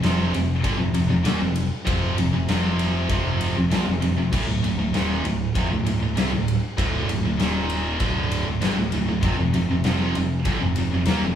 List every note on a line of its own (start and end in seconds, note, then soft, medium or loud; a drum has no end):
0.02 0.32 F1 medium
0.02 0.33 F2 medium
0.02 0.33 C3 loud
0.02 0.34 F3 loud
0.02 snare loud
0.02 ride medium
0.34 0.63 F1 medium
0.34 0.59 F2 medium
0.34 0.59 C3 medium
0.34 ride medium
0.64 0.79 G1 medium
0.64 0.79 G2 medium
0.64 0.79 D3 loud
0.64 kick medium
0.64 ride loud
0.79 0.93 F1 medium
0.79 0.93 F2 medium
0.79 0.94 C3 medium
0.93 1.08 F1 medium
0.93 1.09 F2 medium
0.93 1.09 C3 medium
0.93 ride medium
1.09 1.24 F1 medium
1.09 1.26 F2 medium
1.09 1.24 C3 medium
1.24 1.40 D#2 loud
1.24 1.40 D#3 medium
1.24 1.40 A#3 loud
1.24 snare loud
1.24 ride loud
1.40 1.69 F1 medium
1.40 1.66 F2 medium
1.40 1.66 C3 medium
1.56 ride medium
1.85 2.16 F1 medium
1.85 2.16 F2 loud
1.85 2.17 C3 loud
1.85 2.17 F3 loud
1.85 kick loud
1.85 ride loud
2.17 2.32 F1 medium
2.17 2.32 F2 medium
2.17 2.33 C3 medium
2.17 ride medium
2.33 2.47 F1 medium
2.33 2.47 F2 medium
2.33 2.48 C3 medium
2.48 3.06 F1 loud
2.48 3.08 F2 medium
2.48 3.08 C3 medium
2.48 3.09 F3 loud
2.48 snare loud
2.48 ride medium
2.79 ride medium
3.09 3.52 F1 loud
3.09 3.55 F2 medium
3.09 3.55 C3 loud
3.09 3.55 F3 loud
3.09 kick loud
3.09 ride loud
3.41 ride medium
3.57 3.71 F1 medium
3.57 3.71 F2 medium
3.57 3.72 C3 medium
3.71 3.86 A#1 loud
3.71 3.86 A#2 medium
3.71 3.86 F3 loud
3.71 snare loud
3.71 ride medium
3.87 4.01 F1 medium
3.87 4.01 F2 medium
3.87 4.01 C3 medium
4.02 4.16 F1 medium
4.02 4.16 F2 medium
4.02 4.17 C3 medium
4.02 ride medium
4.17 4.32 F1 medium
4.17 4.32 F2 medium
4.17 4.33 C3 medium
4.32 4.47 D1 loud
4.32 4.46 D2 loud
4.32 4.46 A2 loud
4.32 kick loud
4.32 crash medium
4.47 4.63 D1 medium
4.47 4.62 D2 medium
4.47 4.62 A2 medium
4.63 4.77 D1 medium
4.63 4.77 D2 medium
4.63 4.78 A2 medium
4.63 ride medium
4.79 4.93 D1 medium
4.79 4.94 D2 medium
4.79 4.94 A2 medium
4.94 5.23 D#1 medium
4.94 5.24 D#2 medium
4.94 5.24 A#2 loud
4.94 5.24 D#3 medium
4.94 snare loud
4.94 ride medium
5.24 5.53 D1 medium
5.24 5.50 D2 medium
5.24 5.50 A2 medium
5.24 ride medium
5.55 5.70 F1 medium
5.55 5.70 F2 loud
5.55 5.71 C3 medium
5.55 kick loud
5.55 ride loud
5.71 5.85 D1 medium
5.71 5.85 D2 medium
5.71 5.86 A2 medium
5.86 6.00 D1 medium
5.86 6.01 D2 medium
5.86 6.02 A2 medium
5.86 ride medium
6.01 6.16 D1 medium
6.01 6.16 D2 medium
6.01 6.17 A2 medium
6.17 6.31 C2 medium
6.17 6.31 C3 loud
6.17 6.31 G3 loud
6.17 snare loud
6.17 ride loud
6.32 6.61 D1 medium
6.32 6.56 D2 medium
6.32 6.56 A2 medium
6.48 ride medium
6.78 7.06 D1 loud
6.78 7.08 D2 medium
6.78 7.08 A2 medium
6.78 7.08 D3 loud
6.78 kick loud
6.78 ride loud
7.08 7.22 D1 medium
7.08 7.24 D2 medium
7.08 7.24 A2 medium
7.08 ride medium
7.24 7.38 D1 medium
7.24 7.40 D2 medium
7.24 7.40 A2 medium
7.39 7.96 D#1 medium
7.39 7.99 D#2 medium
7.39 8.00 A#2 medium
7.39 8.00 D#3 medium
7.39 snare loud
7.39 ride medium
7.70 ride medium
8.00 8.43 D1 medium
8.00 8.45 D2 loud
8.00 8.45 A2 loud
8.00 8.46 D3 loud
8.00 kick loud
8.00 ride loud
8.32 ride medium
8.46 8.61 D1 medium
8.46 8.61 D2 medium
8.46 8.62 A2 medium
8.61 8.76 G1 loud
8.61 8.76 G2 loud
8.61 8.76 D3 loud
8.61 snare loud
8.61 ride loud
8.78 8.92 D1 medium
8.78 8.92 D2 medium
8.78 8.93 A2 medium
8.92 9.07 D1 medium
8.92 9.08 D2 medium
8.92 9.07 A2 medium
8.92 ride medium
9.09 9.22 D1 medium
9.09 9.24 D2 medium
9.09 9.24 A2 medium
9.22 9.37 F1 medium
9.22 9.38 F2 loud
9.22 9.38 C3 loud
9.22 kick loud
9.22 ride medium
9.39 9.53 F1 medium
9.39 9.53 F2 medium
9.39 9.54 C3 medium
9.54 9.68 F1 medium
9.54 9.70 F2 medium
9.54 9.70 C3 medium
9.54 ride medium
9.69 9.84 F1 medium
9.69 9.83 F2 medium
9.69 9.85 C3 medium
9.84 10.13 F1 medium
9.84 10.14 F2 medium
9.84 10.15 C3 loud
9.84 10.15 F3 loud
9.84 snare loud
9.84 ride medium
10.15 10.43 F1 medium
10.15 10.41 F2 medium
10.15 10.41 C3 medium
10.15 ride medium
10.45 10.60 G1 medium
10.45 10.60 G2 medium
10.45 10.61 D3 loud
10.45 kick loud
10.45 ride loud
10.61 10.75 F1 medium
10.61 10.77 F2 medium
10.61 10.77 C3 medium
10.76 10.91 F1 medium
10.76 10.93 F2 soft
10.76 10.93 C3 medium
10.76 ride medium
10.92 11.06 F1 medium
10.92 11.08 F2 medium
10.92 11.08 C3 medium
11.05 11.21 D#2 loud
11.05 snare loud
11.05 ride loud
11.10 11.23 D#3 medium
11.10 11.23 A#3 loud
11.22 11.35 F1 medium
11.22 11.35 F2 medium
11.22 11.35 C3 medium